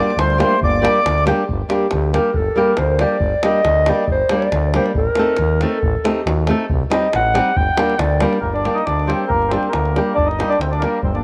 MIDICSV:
0, 0, Header, 1, 6, 480
1, 0, Start_track
1, 0, Key_signature, -2, "minor"
1, 0, Tempo, 434783
1, 677, Time_signature, 2, 2, 24, 8
1, 12406, End_track
2, 0, Start_track
2, 0, Title_t, "Clarinet"
2, 0, Program_c, 0, 71
2, 0, Note_on_c, 0, 58, 70
2, 194, Note_off_c, 0, 58, 0
2, 217, Note_on_c, 0, 55, 83
2, 427, Note_off_c, 0, 55, 0
2, 434, Note_on_c, 0, 57, 74
2, 659, Note_off_c, 0, 57, 0
2, 708, Note_on_c, 0, 58, 86
2, 1371, Note_off_c, 0, 58, 0
2, 1880, Note_on_c, 0, 67, 84
2, 2329, Note_off_c, 0, 67, 0
2, 2355, Note_on_c, 0, 70, 76
2, 2602, Note_on_c, 0, 69, 91
2, 2619, Note_off_c, 0, 70, 0
2, 2838, Note_on_c, 0, 70, 86
2, 2855, Note_off_c, 0, 69, 0
2, 3078, Note_on_c, 0, 72, 89
2, 3095, Note_off_c, 0, 70, 0
2, 3323, Note_on_c, 0, 74, 105
2, 3340, Note_off_c, 0, 72, 0
2, 3799, Note_on_c, 0, 75, 108
2, 3816, Note_off_c, 0, 74, 0
2, 4301, Note_on_c, 0, 74, 93
2, 4318, Note_off_c, 0, 75, 0
2, 4535, Note_off_c, 0, 74, 0
2, 4545, Note_on_c, 0, 72, 91
2, 4769, Note_on_c, 0, 74, 89
2, 4786, Note_off_c, 0, 72, 0
2, 5242, Note_off_c, 0, 74, 0
2, 5249, Note_on_c, 0, 72, 81
2, 5357, Note_off_c, 0, 72, 0
2, 5497, Note_on_c, 0, 70, 97
2, 6204, Note_on_c, 0, 69, 88
2, 6221, Note_off_c, 0, 70, 0
2, 6697, Note_on_c, 0, 67, 73
2, 6713, Note_off_c, 0, 69, 0
2, 6924, Note_on_c, 0, 66, 70
2, 6941, Note_off_c, 0, 67, 0
2, 7164, Note_off_c, 0, 66, 0
2, 7651, Note_on_c, 0, 75, 75
2, 7869, Note_off_c, 0, 75, 0
2, 7903, Note_on_c, 0, 78, 94
2, 8359, Note_on_c, 0, 79, 108
2, 8376, Note_off_c, 0, 78, 0
2, 8829, Note_on_c, 0, 74, 91
2, 8845, Note_off_c, 0, 79, 0
2, 9073, Note_off_c, 0, 74, 0
2, 12183, Note_on_c, 0, 55, 77
2, 12289, Note_off_c, 0, 55, 0
2, 12296, Note_on_c, 0, 58, 64
2, 12405, Note_off_c, 0, 58, 0
2, 12406, End_track
3, 0, Start_track
3, 0, Title_t, "Accordion"
3, 0, Program_c, 1, 21
3, 0, Note_on_c, 1, 74, 100
3, 204, Note_off_c, 1, 74, 0
3, 222, Note_on_c, 1, 72, 98
3, 421, Note_off_c, 1, 72, 0
3, 438, Note_on_c, 1, 72, 92
3, 661, Note_off_c, 1, 72, 0
3, 708, Note_on_c, 1, 74, 106
3, 1371, Note_off_c, 1, 74, 0
3, 9279, Note_on_c, 1, 58, 84
3, 9426, Note_on_c, 1, 62, 65
3, 9429, Note_off_c, 1, 58, 0
3, 9651, Note_on_c, 1, 63, 73
3, 9681, Note_off_c, 1, 62, 0
3, 9771, Note_off_c, 1, 63, 0
3, 9773, Note_on_c, 1, 62, 76
3, 10017, Note_on_c, 1, 60, 84
3, 10032, Note_off_c, 1, 62, 0
3, 10248, Note_on_c, 1, 58, 100
3, 10273, Note_off_c, 1, 60, 0
3, 10470, Note_on_c, 1, 60, 82
3, 10509, Note_off_c, 1, 58, 0
3, 10696, Note_on_c, 1, 58, 73
3, 10740, Note_off_c, 1, 60, 0
3, 11203, Note_on_c, 1, 62, 98
3, 11220, Note_off_c, 1, 58, 0
3, 11324, Note_on_c, 1, 63, 73
3, 11349, Note_off_c, 1, 62, 0
3, 11582, Note_on_c, 1, 62, 84
3, 11590, Note_off_c, 1, 63, 0
3, 11694, Note_on_c, 1, 60, 84
3, 11696, Note_off_c, 1, 62, 0
3, 11828, Note_on_c, 1, 62, 75
3, 11834, Note_off_c, 1, 60, 0
3, 11911, Note_on_c, 1, 58, 83
3, 11950, Note_off_c, 1, 62, 0
3, 12153, Note_off_c, 1, 58, 0
3, 12188, Note_on_c, 1, 60, 85
3, 12304, Note_on_c, 1, 62, 61
3, 12320, Note_off_c, 1, 60, 0
3, 12392, Note_off_c, 1, 62, 0
3, 12406, End_track
4, 0, Start_track
4, 0, Title_t, "Nylon-string guitar"
4, 0, Program_c, 2, 24
4, 0, Note_on_c, 2, 55, 66
4, 0, Note_on_c, 2, 58, 64
4, 0, Note_on_c, 2, 62, 58
4, 0, Note_on_c, 2, 67, 81
4, 116, Note_off_c, 2, 55, 0
4, 119, Note_off_c, 2, 58, 0
4, 124, Note_off_c, 2, 62, 0
4, 128, Note_off_c, 2, 67, 0
4, 421, Note_on_c, 2, 55, 69
4, 426, Note_on_c, 2, 58, 64
4, 432, Note_on_c, 2, 62, 57
4, 441, Note_on_c, 2, 67, 77
4, 599, Note_off_c, 2, 55, 0
4, 601, Note_off_c, 2, 58, 0
4, 604, Note_off_c, 2, 62, 0
4, 608, Note_off_c, 2, 67, 0
4, 904, Note_on_c, 2, 55, 70
4, 912, Note_on_c, 2, 58, 64
4, 919, Note_on_c, 2, 62, 57
4, 927, Note_on_c, 2, 67, 76
4, 1081, Note_off_c, 2, 55, 0
4, 1085, Note_off_c, 2, 58, 0
4, 1088, Note_off_c, 2, 62, 0
4, 1092, Note_off_c, 2, 67, 0
4, 1386, Note_on_c, 2, 55, 75
4, 1394, Note_on_c, 2, 58, 73
4, 1399, Note_on_c, 2, 62, 67
4, 1409, Note_on_c, 2, 67, 91
4, 1563, Note_off_c, 2, 55, 0
4, 1567, Note_off_c, 2, 58, 0
4, 1569, Note_off_c, 2, 62, 0
4, 1574, Note_off_c, 2, 67, 0
4, 1863, Note_on_c, 2, 55, 58
4, 1870, Note_on_c, 2, 58, 58
4, 1878, Note_on_c, 2, 62, 63
4, 1883, Note_on_c, 2, 67, 64
4, 2043, Note_off_c, 2, 55, 0
4, 2044, Note_off_c, 2, 58, 0
4, 2050, Note_off_c, 2, 62, 0
4, 2052, Note_off_c, 2, 67, 0
4, 2356, Note_on_c, 2, 55, 61
4, 2357, Note_on_c, 2, 58, 51
4, 2365, Note_on_c, 2, 62, 62
4, 2368, Note_on_c, 2, 67, 67
4, 2529, Note_off_c, 2, 58, 0
4, 2530, Note_off_c, 2, 55, 0
4, 2534, Note_off_c, 2, 62, 0
4, 2535, Note_off_c, 2, 67, 0
4, 2821, Note_on_c, 2, 55, 65
4, 2830, Note_on_c, 2, 58, 61
4, 2834, Note_on_c, 2, 62, 58
4, 2843, Note_on_c, 2, 67, 71
4, 3003, Note_off_c, 2, 55, 0
4, 3007, Note_off_c, 2, 58, 0
4, 3010, Note_off_c, 2, 62, 0
4, 3012, Note_off_c, 2, 67, 0
4, 3303, Note_on_c, 2, 55, 63
4, 3314, Note_on_c, 2, 58, 66
4, 3320, Note_on_c, 2, 62, 61
4, 3327, Note_on_c, 2, 67, 64
4, 3485, Note_off_c, 2, 55, 0
4, 3490, Note_off_c, 2, 58, 0
4, 3493, Note_off_c, 2, 62, 0
4, 3497, Note_off_c, 2, 67, 0
4, 3791, Note_on_c, 2, 55, 67
4, 3796, Note_on_c, 2, 58, 61
4, 3803, Note_on_c, 2, 62, 65
4, 3807, Note_on_c, 2, 67, 68
4, 3969, Note_off_c, 2, 55, 0
4, 3972, Note_off_c, 2, 58, 0
4, 3974, Note_off_c, 2, 62, 0
4, 3977, Note_off_c, 2, 67, 0
4, 4272, Note_on_c, 2, 55, 66
4, 4281, Note_on_c, 2, 58, 54
4, 4288, Note_on_c, 2, 62, 65
4, 4292, Note_on_c, 2, 67, 75
4, 4450, Note_off_c, 2, 55, 0
4, 4453, Note_off_c, 2, 58, 0
4, 4458, Note_off_c, 2, 67, 0
4, 4459, Note_off_c, 2, 62, 0
4, 4748, Note_on_c, 2, 55, 70
4, 4757, Note_on_c, 2, 58, 58
4, 4762, Note_on_c, 2, 62, 55
4, 4773, Note_on_c, 2, 67, 63
4, 4928, Note_off_c, 2, 55, 0
4, 4933, Note_off_c, 2, 58, 0
4, 4934, Note_off_c, 2, 62, 0
4, 4941, Note_off_c, 2, 67, 0
4, 5235, Note_on_c, 2, 55, 63
4, 5242, Note_on_c, 2, 58, 59
4, 5242, Note_on_c, 2, 62, 60
4, 5253, Note_on_c, 2, 67, 80
4, 5412, Note_off_c, 2, 55, 0
4, 5414, Note_off_c, 2, 62, 0
4, 5415, Note_off_c, 2, 58, 0
4, 5421, Note_off_c, 2, 67, 0
4, 5711, Note_on_c, 2, 57, 61
4, 5723, Note_on_c, 2, 60, 61
4, 5731, Note_on_c, 2, 63, 64
4, 5733, Note_on_c, 2, 69, 69
4, 5889, Note_off_c, 2, 57, 0
4, 5896, Note_off_c, 2, 60, 0
4, 5897, Note_off_c, 2, 63, 0
4, 5900, Note_off_c, 2, 69, 0
4, 6200, Note_on_c, 2, 57, 68
4, 6203, Note_on_c, 2, 60, 65
4, 6212, Note_on_c, 2, 63, 59
4, 6218, Note_on_c, 2, 69, 73
4, 6373, Note_off_c, 2, 57, 0
4, 6373, Note_off_c, 2, 60, 0
4, 6379, Note_off_c, 2, 63, 0
4, 6381, Note_off_c, 2, 69, 0
4, 6671, Note_on_c, 2, 57, 66
4, 6677, Note_on_c, 2, 60, 57
4, 6680, Note_on_c, 2, 63, 70
4, 6686, Note_on_c, 2, 69, 66
4, 6848, Note_off_c, 2, 57, 0
4, 6849, Note_off_c, 2, 60, 0
4, 6852, Note_off_c, 2, 63, 0
4, 6855, Note_off_c, 2, 69, 0
4, 7157, Note_on_c, 2, 57, 68
4, 7167, Note_on_c, 2, 60, 60
4, 7169, Note_on_c, 2, 63, 62
4, 7181, Note_on_c, 2, 69, 73
4, 7329, Note_off_c, 2, 57, 0
4, 7334, Note_off_c, 2, 60, 0
4, 7334, Note_off_c, 2, 63, 0
4, 7341, Note_off_c, 2, 69, 0
4, 7618, Note_on_c, 2, 55, 66
4, 7625, Note_on_c, 2, 60, 68
4, 7636, Note_on_c, 2, 63, 65
4, 7643, Note_on_c, 2, 67, 86
4, 7799, Note_off_c, 2, 55, 0
4, 7802, Note_off_c, 2, 60, 0
4, 7807, Note_off_c, 2, 63, 0
4, 7811, Note_off_c, 2, 67, 0
4, 8103, Note_on_c, 2, 55, 61
4, 8109, Note_on_c, 2, 60, 69
4, 8111, Note_on_c, 2, 63, 73
4, 8116, Note_on_c, 2, 67, 88
4, 8280, Note_off_c, 2, 55, 0
4, 8282, Note_off_c, 2, 60, 0
4, 8284, Note_off_c, 2, 63, 0
4, 8286, Note_off_c, 2, 67, 0
4, 8577, Note_on_c, 2, 55, 71
4, 8583, Note_on_c, 2, 58, 72
4, 8590, Note_on_c, 2, 62, 70
4, 8602, Note_on_c, 2, 67, 77
4, 8757, Note_off_c, 2, 55, 0
4, 8760, Note_off_c, 2, 58, 0
4, 8761, Note_off_c, 2, 62, 0
4, 8769, Note_off_c, 2, 67, 0
4, 9059, Note_on_c, 2, 55, 70
4, 9066, Note_on_c, 2, 58, 59
4, 9072, Note_on_c, 2, 62, 65
4, 9079, Note_on_c, 2, 67, 78
4, 9237, Note_off_c, 2, 55, 0
4, 9240, Note_off_c, 2, 58, 0
4, 9244, Note_off_c, 2, 62, 0
4, 9245, Note_off_c, 2, 67, 0
4, 9543, Note_on_c, 2, 55, 46
4, 9550, Note_on_c, 2, 58, 49
4, 9550, Note_on_c, 2, 62, 49
4, 9564, Note_on_c, 2, 67, 66
4, 9719, Note_off_c, 2, 55, 0
4, 9721, Note_off_c, 2, 58, 0
4, 9722, Note_off_c, 2, 62, 0
4, 9729, Note_off_c, 2, 67, 0
4, 10016, Note_on_c, 2, 55, 55
4, 10022, Note_on_c, 2, 58, 46
4, 10032, Note_on_c, 2, 62, 49
4, 10036, Note_on_c, 2, 67, 64
4, 10195, Note_off_c, 2, 55, 0
4, 10198, Note_off_c, 2, 58, 0
4, 10203, Note_off_c, 2, 62, 0
4, 10204, Note_off_c, 2, 67, 0
4, 10502, Note_on_c, 2, 55, 59
4, 10510, Note_on_c, 2, 58, 51
4, 10516, Note_on_c, 2, 62, 46
4, 10523, Note_on_c, 2, 67, 64
4, 10677, Note_off_c, 2, 55, 0
4, 10682, Note_off_c, 2, 58, 0
4, 10685, Note_off_c, 2, 62, 0
4, 10688, Note_off_c, 2, 67, 0
4, 10996, Note_on_c, 2, 55, 56
4, 10996, Note_on_c, 2, 58, 46
4, 10999, Note_on_c, 2, 62, 54
4, 11012, Note_on_c, 2, 67, 62
4, 11163, Note_off_c, 2, 58, 0
4, 11164, Note_off_c, 2, 55, 0
4, 11166, Note_off_c, 2, 62, 0
4, 11172, Note_off_c, 2, 67, 0
4, 11466, Note_on_c, 2, 55, 59
4, 11475, Note_on_c, 2, 58, 49
4, 11482, Note_on_c, 2, 62, 52
4, 11487, Note_on_c, 2, 67, 72
4, 11639, Note_off_c, 2, 55, 0
4, 11641, Note_off_c, 2, 58, 0
4, 11647, Note_off_c, 2, 62, 0
4, 11649, Note_off_c, 2, 67, 0
4, 11941, Note_on_c, 2, 55, 57
4, 11946, Note_on_c, 2, 58, 53
4, 11952, Note_on_c, 2, 62, 49
4, 11959, Note_on_c, 2, 67, 54
4, 12116, Note_off_c, 2, 55, 0
4, 12116, Note_off_c, 2, 58, 0
4, 12121, Note_off_c, 2, 62, 0
4, 12124, Note_off_c, 2, 67, 0
4, 12406, End_track
5, 0, Start_track
5, 0, Title_t, "FM bass"
5, 0, Program_c, 3, 39
5, 186, Note_on_c, 3, 38, 106
5, 478, Note_off_c, 3, 38, 0
5, 678, Note_on_c, 3, 31, 115
5, 967, Note_off_c, 3, 31, 0
5, 1168, Note_on_c, 3, 38, 101
5, 1455, Note_off_c, 3, 38, 0
5, 1651, Note_on_c, 3, 31, 100
5, 1792, Note_off_c, 3, 31, 0
5, 2129, Note_on_c, 3, 38, 108
5, 2416, Note_off_c, 3, 38, 0
5, 2608, Note_on_c, 3, 31, 85
5, 2752, Note_off_c, 3, 31, 0
5, 3071, Note_on_c, 3, 38, 104
5, 3364, Note_off_c, 3, 38, 0
5, 3532, Note_on_c, 3, 31, 105
5, 3687, Note_off_c, 3, 31, 0
5, 4026, Note_on_c, 3, 38, 117
5, 4321, Note_off_c, 3, 38, 0
5, 4521, Note_on_c, 3, 31, 86
5, 4667, Note_off_c, 3, 31, 0
5, 4991, Note_on_c, 3, 38, 111
5, 5284, Note_off_c, 3, 38, 0
5, 5457, Note_on_c, 3, 33, 98
5, 5610, Note_off_c, 3, 33, 0
5, 5947, Note_on_c, 3, 39, 111
5, 6241, Note_off_c, 3, 39, 0
5, 6430, Note_on_c, 3, 33, 103
5, 6579, Note_off_c, 3, 33, 0
5, 6911, Note_on_c, 3, 39, 105
5, 7202, Note_off_c, 3, 39, 0
5, 7408, Note_on_c, 3, 36, 98
5, 7550, Note_off_c, 3, 36, 0
5, 7884, Note_on_c, 3, 33, 106
5, 8170, Note_off_c, 3, 33, 0
5, 8355, Note_on_c, 3, 31, 95
5, 8500, Note_off_c, 3, 31, 0
5, 8822, Note_on_c, 3, 38, 111
5, 9114, Note_off_c, 3, 38, 0
5, 9290, Note_on_c, 3, 31, 79
5, 9586, Note_off_c, 3, 31, 0
5, 9796, Note_on_c, 3, 38, 86
5, 10083, Note_off_c, 3, 38, 0
5, 10272, Note_on_c, 3, 31, 82
5, 10561, Note_off_c, 3, 31, 0
5, 10755, Note_on_c, 3, 38, 99
5, 11043, Note_off_c, 3, 38, 0
5, 11224, Note_on_c, 3, 31, 80
5, 11515, Note_off_c, 3, 31, 0
5, 11696, Note_on_c, 3, 38, 87
5, 11988, Note_off_c, 3, 38, 0
5, 12171, Note_on_c, 3, 31, 92
5, 12406, Note_off_c, 3, 31, 0
5, 12406, End_track
6, 0, Start_track
6, 0, Title_t, "Davul"
6, 114, Note_on_c, 9, 37, 26
6, 208, Note_off_c, 9, 37, 0
6, 208, Note_on_c, 9, 37, 74
6, 318, Note_off_c, 9, 37, 0
6, 333, Note_on_c, 9, 37, 26
6, 443, Note_off_c, 9, 37, 0
6, 445, Note_on_c, 9, 37, 62
6, 555, Note_off_c, 9, 37, 0
6, 690, Note_on_c, 9, 43, 92
6, 801, Note_off_c, 9, 43, 0
6, 935, Note_on_c, 9, 37, 75
6, 1046, Note_off_c, 9, 37, 0
6, 1056, Note_on_c, 9, 37, 27
6, 1166, Note_off_c, 9, 37, 0
6, 1170, Note_on_c, 9, 37, 74
6, 1280, Note_off_c, 9, 37, 0
6, 1303, Note_on_c, 9, 37, 26
6, 1400, Note_off_c, 9, 37, 0
6, 1400, Note_on_c, 9, 37, 63
6, 1511, Note_off_c, 9, 37, 0
6, 1644, Note_on_c, 9, 43, 72
6, 1754, Note_off_c, 9, 43, 0
6, 1875, Note_on_c, 9, 37, 61
6, 1986, Note_off_c, 9, 37, 0
6, 2106, Note_on_c, 9, 37, 64
6, 2216, Note_off_c, 9, 37, 0
6, 2364, Note_on_c, 9, 37, 65
6, 2474, Note_off_c, 9, 37, 0
6, 2585, Note_on_c, 9, 43, 81
6, 2695, Note_off_c, 9, 43, 0
6, 3056, Note_on_c, 9, 37, 62
6, 3166, Note_off_c, 9, 37, 0
6, 3301, Note_on_c, 9, 37, 60
6, 3412, Note_off_c, 9, 37, 0
6, 3538, Note_on_c, 9, 43, 90
6, 3648, Note_off_c, 9, 43, 0
6, 3786, Note_on_c, 9, 37, 72
6, 3896, Note_off_c, 9, 37, 0
6, 4026, Note_on_c, 9, 37, 65
6, 4136, Note_off_c, 9, 37, 0
6, 4265, Note_on_c, 9, 37, 68
6, 4375, Note_off_c, 9, 37, 0
6, 4499, Note_on_c, 9, 43, 85
6, 4610, Note_off_c, 9, 43, 0
6, 4740, Note_on_c, 9, 37, 72
6, 4851, Note_off_c, 9, 37, 0
6, 4882, Note_on_c, 9, 37, 26
6, 4992, Note_off_c, 9, 37, 0
6, 4992, Note_on_c, 9, 37, 60
6, 5102, Note_off_c, 9, 37, 0
6, 5230, Note_on_c, 9, 37, 64
6, 5340, Note_off_c, 9, 37, 0
6, 5362, Note_on_c, 9, 37, 29
6, 5463, Note_on_c, 9, 43, 82
6, 5472, Note_off_c, 9, 37, 0
6, 5574, Note_off_c, 9, 43, 0
6, 5690, Note_on_c, 9, 37, 62
6, 5801, Note_off_c, 9, 37, 0
6, 5923, Note_on_c, 9, 37, 59
6, 6034, Note_off_c, 9, 37, 0
6, 6192, Note_on_c, 9, 37, 54
6, 6302, Note_off_c, 9, 37, 0
6, 6433, Note_on_c, 9, 43, 88
6, 6543, Note_off_c, 9, 43, 0
6, 6681, Note_on_c, 9, 37, 71
6, 6792, Note_off_c, 9, 37, 0
6, 6922, Note_on_c, 9, 37, 71
6, 7032, Note_off_c, 9, 37, 0
6, 7145, Note_on_c, 9, 37, 62
6, 7255, Note_off_c, 9, 37, 0
6, 7392, Note_on_c, 9, 43, 85
6, 7502, Note_off_c, 9, 43, 0
6, 7635, Note_on_c, 9, 37, 72
6, 7745, Note_off_c, 9, 37, 0
6, 7875, Note_on_c, 9, 37, 67
6, 7985, Note_off_c, 9, 37, 0
6, 8117, Note_on_c, 9, 37, 64
6, 8228, Note_off_c, 9, 37, 0
6, 8352, Note_on_c, 9, 43, 102
6, 8463, Note_off_c, 9, 43, 0
6, 8583, Note_on_c, 9, 37, 81
6, 8694, Note_off_c, 9, 37, 0
6, 8717, Note_on_c, 9, 37, 34
6, 8824, Note_off_c, 9, 37, 0
6, 8824, Note_on_c, 9, 37, 75
6, 8934, Note_off_c, 9, 37, 0
6, 9058, Note_on_c, 9, 37, 70
6, 9168, Note_off_c, 9, 37, 0
6, 9193, Note_on_c, 9, 37, 28
6, 9303, Note_off_c, 9, 37, 0
6, 9311, Note_on_c, 9, 43, 59
6, 9422, Note_off_c, 9, 43, 0
6, 9446, Note_on_c, 9, 37, 19
6, 9553, Note_off_c, 9, 37, 0
6, 9553, Note_on_c, 9, 37, 53
6, 9664, Note_off_c, 9, 37, 0
6, 9693, Note_on_c, 9, 37, 21
6, 9792, Note_off_c, 9, 37, 0
6, 9792, Note_on_c, 9, 37, 49
6, 9902, Note_off_c, 9, 37, 0
6, 9930, Note_on_c, 9, 37, 20
6, 10041, Note_off_c, 9, 37, 0
6, 10043, Note_on_c, 9, 37, 53
6, 10154, Note_off_c, 9, 37, 0
6, 10265, Note_on_c, 9, 43, 76
6, 10376, Note_off_c, 9, 43, 0
6, 10402, Note_on_c, 9, 37, 19
6, 10504, Note_off_c, 9, 37, 0
6, 10504, Note_on_c, 9, 37, 55
6, 10615, Note_off_c, 9, 37, 0
6, 10629, Note_on_c, 9, 37, 25
6, 10739, Note_off_c, 9, 37, 0
6, 10745, Note_on_c, 9, 37, 66
6, 10855, Note_off_c, 9, 37, 0
6, 10879, Note_on_c, 9, 37, 24
6, 10990, Note_off_c, 9, 37, 0
6, 10999, Note_on_c, 9, 37, 52
6, 11109, Note_off_c, 9, 37, 0
6, 11238, Note_on_c, 9, 43, 86
6, 11349, Note_off_c, 9, 43, 0
6, 11383, Note_on_c, 9, 37, 24
6, 11481, Note_off_c, 9, 37, 0
6, 11481, Note_on_c, 9, 37, 62
6, 11591, Note_off_c, 9, 37, 0
6, 11619, Note_on_c, 9, 37, 26
6, 11715, Note_off_c, 9, 37, 0
6, 11715, Note_on_c, 9, 37, 57
6, 11826, Note_off_c, 9, 37, 0
6, 11845, Note_on_c, 9, 37, 24
6, 11947, Note_off_c, 9, 37, 0
6, 11947, Note_on_c, 9, 37, 50
6, 12057, Note_off_c, 9, 37, 0
6, 12175, Note_on_c, 9, 43, 81
6, 12285, Note_off_c, 9, 43, 0
6, 12310, Note_on_c, 9, 37, 20
6, 12406, Note_off_c, 9, 37, 0
6, 12406, End_track
0, 0, End_of_file